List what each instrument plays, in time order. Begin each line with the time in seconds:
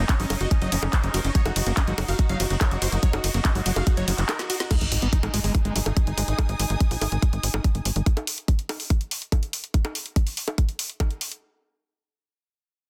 Already playing: synth texture D#4 D#5
0.00 wobble bass G#3
0.09 acid bass C#4, supersaw synth C#5, kick, clap, closed hi-hat
0.20 analog synth bass G#1, acid bass F#3, supersaw synth C#4, open hi-hat
0.30 analog synth bass F#1, acid bass F#3, supersaw synth C#4, open hi-hat, ride, high bongo
0.41 analog synth bass F#1, acid bass F#4, supersaw synth D#5, closed hi-hat
0.51 supersaw synth C#4, kick, closed hi-hat
0.62 analog synth bass F#1, acid bass F#3, supersaw synth D#5, closed hi-hat
0.72 analog synth bass F#1, acid bass F3, supersaw synth C#4, open hi-hat, ride
0.83 analog synth bass F#1, supersaw synth C#4, clap, closed hi-hat, high bongo
0.93 wobble bass G#3, supersaw synth C5, kick, clap, closed hi-hat
1.04 analog synth bass F#1, supersaw synth C#4, closed hi-hat
1.14 analog synth bass F#1, acid bass F#4, supersaw synth A#4, open hi-hat, ride
1.25 analog synth bass F#1, supersaw synth C#4, closed hi-hat
1.35 acid bass F#3, supersaw synth C#5, kick, closed hi-hat
1.46 analog synth bass F#1, supersaw synth F#4, closed hi-hat, high bongo
1.56 analog synth bass F#1, supersaw synth F#4, open hi-hat, ride
1.66 analog synth bass F#1, acid bass A#3, supersaw synth F#4, closed hi-hat
1.77 acid bass C#4, supersaw synth D#5, kick, clap, closed hi-hat
1.87 analog synth bass G#1, acid bass F#3, supersaw synth F#4, closed hi-hat
1.98 analog synth bass F#1, acid bass F#3, supersaw synth F#4, open hi-hat, ride, high bongo
2.08 analog synth bass F#1, acid bass F#4, supersaw synth F5, open hi-hat
2.19 supersaw synth F#4, kick, closed hi-hat
2.29 analog synth bass F#1, acid bass F#3, supersaw synth F5, closed hi-hat
2.40 analog synth bass F#1, acid bass F3, supersaw synth F#4, open hi-hat, ride
2.50 analog synth bass F#1, supersaw synth F#4, closed hi-hat
2.61 wobble bass A#3, supersaw synth C#5, kick, clap, closed hi-hat, high bongo
2.71 analog synth bass F#1, supersaw synth F#4, closed hi-hat
2.82 analog synth bass F#1, acid bass F#4, supersaw synth C5, open hi-hat, ride
2.92 analog synth bass F#1, supersaw synth F#4, closed hi-hat
3.03 acid bass F#3, supersaw synth C#5, kick, closed hi-hat
3.13 analog synth bass F#1, supersaw synth F#4, closed hi-hat, high bongo
3.24 analog synth bass F#1, supersaw synth F#4, open hi-hat, ride
3.34 analog synth bass F#1, acid bass A#3, supersaw synth F#4, closed hi-hat
3.45 wobble bass G#3, acid bass C#4, supersaw synth D#5, kick, clap, closed hi-hat
3.55 analog synth bass G#1, acid bass F#3, supersaw synth F#4, open hi-hat
3.66 analog synth bass F#1, acid bass F#3, supersaw synth F#4, open hi-hat, ride
3.76 analog synth bass F#1, acid bass F#4, supersaw synth F5, closed hi-hat, high bongo
3.87 supersaw synth F#4, kick, closed hi-hat
3.97 analog synth bass F#1, acid bass F#3, supersaw synth C#5, closed hi-hat
4.08 analog synth bass F#1, acid bass F3, supersaw synth F#4, open hi-hat, ride
4.18 analog synth bass F#1, supersaw synth F#4, clap, closed hi-hat
4.29 supersaw synth A#4, snare, clap, closed hi-hat, high bongo
4.39 supersaw synth F#4, snare, closed hi-hat
4.50 acid bass F#4, supersaw synth F#4, open hi-hat, ride
4.60 supersaw synth F#4, snare, closed hi-hat
4.71 acid bass G#3, string section D#4, kick, closed hi-hat, crash, sub drop, high bongo
4.77 string section G#4
4.81 analog synth bass G#1, closed hi-hat
4.92 analog synth bass G#1, open hi-hat
5.02 analog synth bass G#1, acid bass B3, closed hi-hat
5.13 acid bass D#4, kick, closed hi-hat
5.23 analog synth bass A#1, acid bass G#3, closed hi-hat, high bongo
5.34 analog synth bass G#1, acid bass G#3, open hi-hat
5.44 analog synth bass G#1, acid bass G#3, open hi-hat
5.55 kick, closed hi-hat
5.65 analog synth bass G#1, acid bass G#3, string section G#5 D#6, closed hi-hat
5.76 analog synth bass G#1, acid bass F#3, open hi-hat
5.86 analog synth bass G#1, closed hi-hat, high bongo
5.97 kick, closed hi-hat
6.07 analog synth bass G#1, closed hi-hat
6.18 analog synth bass G#1, acid bass G#3, open hi-hat
6.28 analog synth bass G#1, closed hi-hat
6.39 kick, closed hi-hat, high bongo
6.49 analog synth bass G#1, closed hi-hat
6.60 analog synth bass G#1, open hi-hat
6.70 analog synth bass G#1, closed hi-hat
6.80 kick, closed hi-hat
6.91 analog synth bass A#1, open hi-hat
7.01 analog synth bass G#1, open hi-hat, high bongo
7.12 analog synth bass G#1, closed hi-hat
7.22 kick, closed hi-hat
7.33 analog synth bass G#1, closed hi-hat
7.43 analog synth bass G#1, open hi-hat
7.54 analog synth bass G#1, closed hi-hat, high bongo
7.64 kick, closed hi-hat
7.75 analog synth bass G#1, closed hi-hat
7.85 analog synth bass G#1, open hi-hat
7.96 analog synth bass G#1, closed hi-hat
8.06 kick, closed hi-hat
8.17 closed hi-hat, high bongo
8.27 open hi-hat
8.38 closed hi-hat
8.48 kick, closed hi-hat
8.59 closed hi-hat
8.69 open hi-hat, high bongo
8.80 open hi-hat
8.90 kick, closed hi-hat
9.01 closed hi-hat
9.11 open hi-hat
9.22 closed hi-hat
9.32 kick, closed hi-hat, high bongo
9.43 closed hi-hat
9.53 open hi-hat
9.64 closed hi-hat
9.74 kick, closed hi-hat
9.85 closed hi-hat, high bongo
9.95 open hi-hat
10.06 closed hi-hat
10.16 kick, closed hi-hat
10.27 open hi-hat
10.37 open hi-hat
10.48 closed hi-hat, high bongo
10.58 kick, closed hi-hat
10.69 closed hi-hat
10.79 open hi-hat
10.90 closed hi-hat
11.00 kick, closed hi-hat, high bongo
11.11 closed hi-hat
11.21 open hi-hat
11.32 closed hi-hat